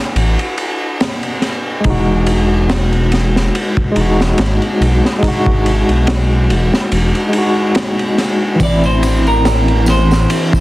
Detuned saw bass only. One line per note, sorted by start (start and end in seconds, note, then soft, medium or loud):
0.16 0.37 A1 medium
1.85 3.50 E1 medium
3.96 4.34 E1 medium
4.39 4.59 G#1 loud
4.81 5.01 B1 medium
5.47 5.83 G#1 medium
5.89 6.51 B1 medium
6.50 6.71 E1 medium
6.92 7.13 E1 loud
8.60 10.26 A1 medium